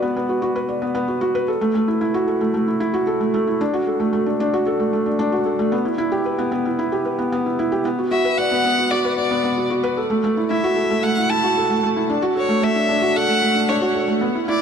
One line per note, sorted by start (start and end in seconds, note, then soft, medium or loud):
0.00 0.15 B3 loud
0.00 0.29 F#4 loud
0.00 0.56 B4 medium
0.00 0.69 D5 medium
0.16 0.29 B3 loud
0.29 0.40 F#4 medium
0.42 0.55 F#4 loud
0.56 0.63 B4 medium
0.69 0.81 D5 medium
0.82 0.93 B3 loud
0.95 1.07 B3 loud
1.08 1.20 F#4 medium
1.21 1.34 F#4 loud
1.35 1.42 B4 loud
1.48 1.61 A4 medium
1.61 1.73 A3 loud
1.75 1.87 A3 loud
1.88 1.99 E4 medium
2.01 2.14 E4 loud
2.14 2.22 F#4 loud
2.28 2.40 A4 medium
2.41 2.52 A3 loud
2.54 2.67 A3 loud
2.68 2.79 E4 medium
2.80 2.93 E4 loud
2.94 3.01 F#4 loud
3.07 3.20 A4 medium
3.20 3.32 A3 medium
3.34 3.47 A3 loud
3.47 3.60 E4 medium
3.61 3.73 D4 loud
3.73 3.81 F#4 loud
3.87 4.00 A4 medium
4.00 4.11 A3 loud
4.13 4.26 A3 loud
4.26 4.39 D4 medium
4.40 4.53 D4 loud
4.53 4.61 F#4 loud
4.66 4.79 A4 medium
4.79 4.91 A3 medium
4.93 5.06 A3 medium
5.06 5.18 D4 medium
5.19 5.32 D4 loud
5.32 5.40 F#4 medium
5.46 5.59 A4 medium
5.59 5.72 A3 loud
5.72 5.85 B3 loud
5.85 5.97 E4 medium
5.98 6.11 E4 loud
6.12 6.20 G4 loud
6.26 6.38 B4 medium
6.38 6.50 B3 loud
6.52 6.65 B3 loud
6.65 6.77 E4 medium
6.79 6.92 E4 loud
6.92 7.00 G4 medium
7.05 7.18 B4 medium
7.19 7.31 B3 loud
7.32 7.45 B3 loud
7.46 7.57 E4 medium
7.59 7.71 E4 loud
7.72 7.80 G4 loud
7.85 7.98 B3 loud
7.99 8.10 F#4 medium
8.11 8.24 F#4 loud
8.11 8.39 E5 loud
8.25 8.32 B4 loud
8.38 8.51 D5 medium
8.38 8.92 F#5 loud
8.51 8.63 B3 loud
8.65 8.77 B3 loud
8.79 8.90 F#4 medium
8.91 9.04 F#4 loud
8.91 9.17 D5 medium
9.05 9.12 B4 loud
9.17 9.67 D5 medium
9.17 9.31 D5 medium
9.31 9.42 B3 loud
9.44 9.57 B3 loud
9.57 9.69 F#4 medium
9.70 9.83 F#4 loud
9.83 9.91 B4 loud
9.97 10.10 A4 medium
10.10 10.22 A3 loud
10.24 10.37 A3 loud
10.37 10.49 E4 medium
10.50 10.63 E4 loud
10.50 11.05 E5 medium
10.64 10.71 F#4 loud
10.76 10.89 A4 medium
10.90 11.02 A3 loud
11.04 11.16 A3 loud
11.04 11.32 F#5 loud
11.17 11.29 E4 medium
11.30 11.43 E4 loud
11.30 11.83 A5 loud
11.44 11.51 F#4 loud
11.57 11.70 A4 medium
11.71 11.82 A3 medium
11.83 11.96 A3 loud
11.96 12.09 E4 medium
12.10 12.22 D4 loud
12.22 12.30 F#4 loud
12.35 12.49 A4 medium
12.35 12.65 C#5 medium
12.49 12.61 A3 loud
12.62 12.75 A3 loud
12.62 13.18 E5 loud
12.75 12.87 D4 medium
12.89 13.02 D4 loud
13.02 13.10 F#4 loud
13.15 13.28 A4 medium
13.15 13.70 F#5 loud
13.28 13.40 A3 medium
13.42 13.55 A3 loud
13.55 13.67 D4 medium
13.69 13.82 D4 loud
13.69 14.09 C#5 medium
13.81 13.90 F#4 loud
13.95 14.08 A4 medium
14.08 14.21 A3 loud
14.21 14.34 B3 loud
14.35 14.47 E4 medium
14.48 14.61 E4 loud
14.48 14.62 D5 medium